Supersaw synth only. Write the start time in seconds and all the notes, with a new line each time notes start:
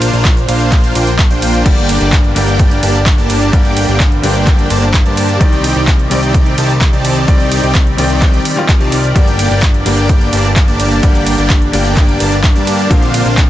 Already playing: A#3 D4 F4 C5 F5
0.13 A#3 D4 F4 C5 F5
0.48 A#3 D4 F4 C5 F5
0.95 A#3 D4 F4 C5 G5
1.31 A#3 D4 F4 C5 G5
1.66 A#3 D4 G4 D5 G5
2.01 A#3 D4 G4 D5 G5
2.36 A#3 D4 G4 D5 G5
2.83 A#3 D4 G4 D5 A5
3.18 A#3 D4 G4 D5 A5
3.53 A#3 D4 G4 D5 G5
3.88 A#3 D4 G4 D5 G5
4.24 A#3 D4 G4 D5 G5
4.70 A#3 D4 G4 D5 A5
5.05 A#3 D4 G4 D5 A5
5.41 C4 D#4 G4 D5 G5
5.76 C4 D#4 G4 D5 G5
6.11 C4 D#4 G4 D5 G5
6.58 C4 D#4 G4 D5 A5
6.93 C4 D#4 G4 D5 A5
7.28 C4 D#4 G4 D5 G5
7.63 C4 D#4 G4 D5 G5
7.98 C4 D#4 G4 D5 G5
8.80 C4 D#4 G4 D5 A5
9.16 A#3 D4 G4 D5 G5
9.51 A#3 D4 G4 D5 G5
9.86 A#3 D4 G4 D5 G5
10.33 A#3 D4 G4 D5 A5
10.68 A#3 D4 G4 D5 A5
11.03 A#3 D4 G4 D5 G5
11.38 A#3 D4 G4 D5 G5
11.73 A#3 D4 G4 D5 G5
12.20 A#3 D4 G4 D5 A5
12.56 A#3 D4 G4 D5 A5
12.91 A#3 D4 F4 C5 F5
13.26 A#3 D4 F4 C5 F5